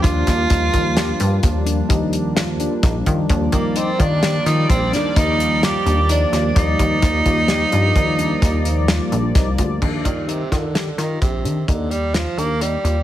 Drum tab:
CC |--------------|--------------|--------------|x-------------|
HH |xxxxxxxxxxxxxx|xxxxxxxxxxxxxx|xxxxxxxxxxxxxx|-xxxxxxxxxxxxx|
SD |-oo-o-----o-o-|----oo-o--o--o|--o-o---o-o-o-|---ooo----o---|
BD |oooo--o-o---oo|oo-o--o-o-----|oooo--o-o---oo|oo-o--o-o-----|